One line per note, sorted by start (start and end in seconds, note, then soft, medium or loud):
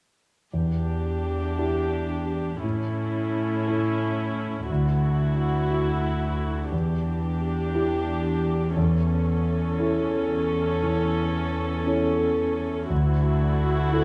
0.53 1.55 E2 soft
0.53 2.59 E2 soft
0.53 2.60 D4 soft
0.53 2.60 G4 soft
1.59 2.59 E4 soft
1.59 2.60 G4 soft
2.64 4.69 A2 soft
2.64 3.64 A2 soft
2.64 4.66 C#4 soft
2.64 4.66 E4 soft
3.67 4.65 E4 soft
3.67 4.66 A4 soft
4.69 6.69 D2 soft
4.69 5.68 D2 soft
4.69 6.69 E4 soft
4.69 6.69 F#4 soft
5.71 6.69 E4 soft
5.71 6.69 F#4 soft
6.72 12.90 E2 soft
6.72 7.72 E2 soft
6.72 8.73 D4 soft
6.72 8.72 G4 soft
7.75 8.72 E4 soft
7.75 8.73 G4 soft
8.77 9.76 E2 soft
8.77 12.87 C#4 soft
8.77 12.87 A4 soft
9.79 10.79 C#4 soft
9.79 10.79 E4 soft
9.79 10.79 A4 soft
10.83 12.49 E3 soft
11.87 12.87 C#4 soft
11.87 12.87 E4 soft
11.87 12.87 A4 soft
12.90 13.91 D2 soft
12.90 14.04 D2 soft
12.90 14.04 E4 medium
12.90 14.04 F#4 medium
13.93 14.04 E4 soft
13.93 14.04 F#4 soft
13.93 14.04 A4 soft